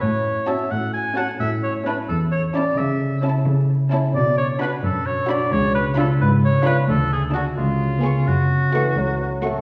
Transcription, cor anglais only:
\new Staff \with { instrumentName = "Cor anglais" } { \time 6/8 \key fis \minor \tempo 4. = 87 cis''4 e''8 fis''8 gis''8 fis''8 | e''8 cis''8 b'8 a'8 cis''8 d''8 | e''4 r2 | d''8 cis''8 b'8 a'8 cis''8 d''8 |
cis''8 b'8 a'8 b'8 cis''8 b'8 | a'8 gis'8 fis'8 eis'4. | fis'2~ fis'8 r8 | }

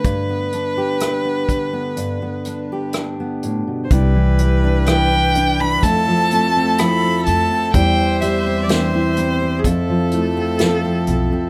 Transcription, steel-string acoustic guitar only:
\new Staff \with { instrumentName = "Steel-string acoustic guitar" } { \time 4/4 \key c \major \tempo 4 = 63 << { r16 b16 d'16 g'16 d'16 b8 b8 b16 d'16 g'16 d'16 b8. | e'8 g16 d'8 d'16 e'16 d'16 e'8 a16 c'8 c'16 e'16 c'16 | e'8 g16 c'8 c'16 e'16 c'16 e'8 a16 c'8 c'16 e'16 c'16 | } \\ { <g, d>4. d8 g,4. a,16 b,16 | c16 e8. e4 f,16 f8. f4 | e,16 e8. e4 f,16 f8. f4 | } >> }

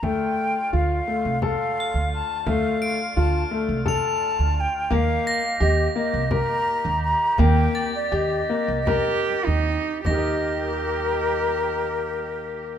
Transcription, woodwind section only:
\new Staff \with { instrumentName = "Woodwind section" } { \time 7/8 \key ees \lydian \tempo 4 = 85 << { <d f'>2.~ <d f'>8~ | <d f'>2.~ <d f'>8 | <ees g'>2.~ <ees g'>8~ | <ees g'>2.~ <ees g'>8 |
<ees bes g'>2.~ <ees bes g'>8 | } \\ { a2.~ a8~ | a2.~ a8 | bes2.~ bes8 | c'2.~ c'8 |
r2. r8 | } >> }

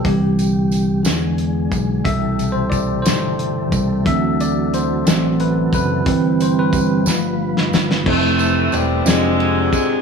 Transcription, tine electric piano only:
<<
  \new Staff \with { instrumentName = "Tine electric piano" } { \time 6/8 \key c \major \tempo 4. = 60 g'8 r2 r8 | e''8. c''16 d''8 c''4 r8 | e''8 d''8 c''4 b'8 b'8~ | b'8 c''16 b'4. r8. |
<a c' e' a' c''>4. <c' d' f' aes' d''>4. | }
  \new Staff \with { instrumentName = "Tine electric piano" } { \clef bass \time 6/8 \key c \major <d e b>8 r4 <d gis b>4. | <b, c g>2. | <e fis c'>4. <e fis c'>8 r4 | <e g c'>4. <f a b>4. |
r2. | }
>>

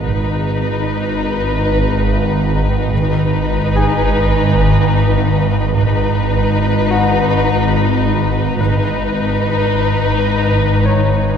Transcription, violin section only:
\new Staff \with { instrumentName = "Violin section" } { \time 5/4 \key gis \minor \tempo 4 = 106 <dis' b'>1~ <dis' b'>4 | <dis' b'>1~ <dis' b'>4 | <dis' b'>1~ <dis' b'>4 | <dis' b'>1~ <dis' b'>4 | }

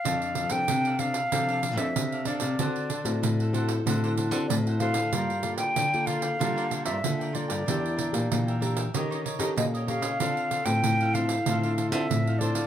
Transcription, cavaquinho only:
\new Staff \with { instrumentName = "Cavaquinho" } { \time 4/4 \key f \major \tempo 4 = 94 <d' a' d'' f''>8 <d' a' d'' f''>8. <a' d'' f''>16 <d' a' d'' f''>16 <a' d'' f''>16 <d' a' d'' f''>16 <d' a' d'' f''>16 <d' a' d'' f''>16 <d' a' d'' f''>16 r16 <a' d'' f''>16 <d' a' d'' f''>16 <a' d'' f''>16 | <d' a' c'' fis''>8 <d' a' c'' fis''>8. <a' c'' fis''>16 <d' a' c'' fis''>16 <a' c'' fis''>16 <d' a' c'' fis''>16 <d' a' c'' fis''>16 <d' a' c'' fis''>16 <d' a' c'' fis''>16 r16 <a' c'' fis''>16 <d' a' c'' fis''>16 <a' c'' fis''>16 | <f' bes' d'' g''>8 <f' bes' d'' g''>8. <bes' d'' g''>16 <f' bes' d'' g''>16 <bes' d'' g''>16 <f' bes' d'' g''>16 <f' bes' d'' g''>16 <f' bes' d'' g''>16 <f' bes' d'' g''>16 r16 <bes' d'' g''>16 <f' bes' d'' g''>16 <bes' d'' g''>16 | <d' bes' e'' g''>8 <d' bes' e'' g''>8. <bes' e'' g''>16 <d' bes' e'' g''>16 <bes' e'' g''>16 <ees' g' des'' ees''>16 <ees' g' des'' ees''>16 <ees' g' des'' ees''>16 <ees' g' des'' ees''>16 r16 <g' des'' ees''>16 <ees' g' des'' ees''>16 <g' des'' ees''>16 |
<d' a' c'' f''>8 <d' a' c'' f''>8. <a' c'' f''>16 <d' a' c'' f''>16 <a' c'' f''>16 <d' a' c'' f''>16 <d' a' c'' f''>16 <d' a' c'' f''>16 <d' a' c'' f''>16 r16 <a' c'' f''>16 <d' a' c'' f''>16 <a' c'' f''>16 | }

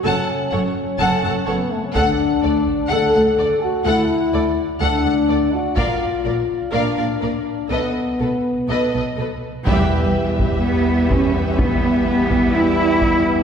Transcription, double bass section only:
\new Staff \with { instrumentName = "Double bass section" } { \clef bass \time 4/4 \key b \phrygian \tempo 4 = 125 fis,,8 r8 fis,,8 r8 fis,,8 fis,,8 fis,,8 r8 | d,8 r8 d,8 r8 d,8 d,8 d,8 r8 | d,8 r8 d,8 r8 d,8 d,8 d,8 r8 | bes,,8 r8 bes,,8 r8 bes,,8 bes,,8 bes,,8 r8 |
b,,8 r8 b,,8 r8 b,,8 b,,8 b,,8 r8 | \key e \minor e,1~ | e,1 | }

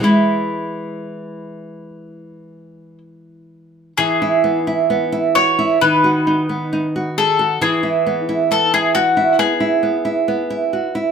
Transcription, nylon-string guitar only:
\new Staff \with { instrumentName = "Nylon-string guitar" } { \time 4/4 \key e \major \tempo 4 = 66 <e gis e'>1 | e16 e'16 b16 e'16 b16 e'16 fis'16 e'16 dis16 fis'16 dis'16 b16 dis'16 fis'16 gis'16 fis'16 | e16 e'16 b16 e'16 b16 e'16 fis'16 e'16 b16 e'16 b16 e'16 b16 e'16 fis'16 e'16 | }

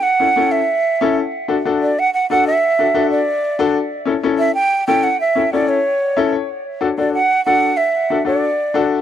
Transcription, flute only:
\new Staff \with { instrumentName = "Flute" } { \time 4/4 \key d \major \tempo 4 = 186 fis''4. e''2 r8 | r4. d''8 fis''8 fis''8 fis''8 e''8~ | e''4. d''2 r8 | r4. e''8 g''4 g''8 fis''8 |
e''4 d''8 cis''2 r8 | r4. d''8 fis''4 fis''4 | e''4. d''2 r8 | }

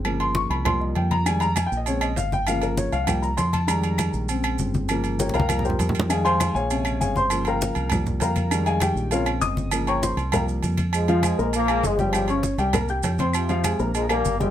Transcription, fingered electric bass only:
\new Staff \with { instrumentName = "Fingered electric bass" } { \clef bass \time 4/4 \key f \minor \tempo 4 = 199 g,,4. c,4. f,4~ | f,4. bes,,4. g,,4~ | g,,4. c,4. f,4~ | f,4. bes,,4. g,,4~ |
g,,4. c,4. f,4~ | f,4. bes,,4. g,,4~ | g,,4. c,4. f,4~ | f,4. bes,,4. g,,4~ |
g,,4. c,4. f,4~ | f,4. bes,,4. g,,4~ | g,,4. c,4. f,4~ | f,4. bes,,4. g,,4 | }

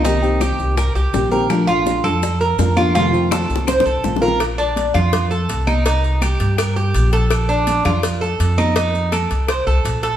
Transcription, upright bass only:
\new Staff \with { instrumentName = "Upright bass" } { \clef bass \time 4/4 \key bes \major \tempo 4 = 165 c,4. c,4 c,8 bes,,4~ | bes,,4. f,4. f,4~ | f,4. c,4 c,8 bes,,4~ | bes,,4. f,4. c,4~ |
c,4. g,4. bes,,4~ | bes,,4. f,4. f,4~ | f,4. c,4 c,8 bes,,4 | }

